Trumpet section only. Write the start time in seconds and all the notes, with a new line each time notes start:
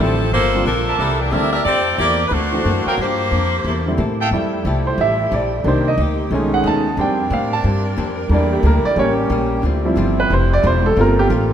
0.87 A#4 D5 E5 A5
2.86 A#4 D5 F5 G5
4.20 A4 E5 F5 G5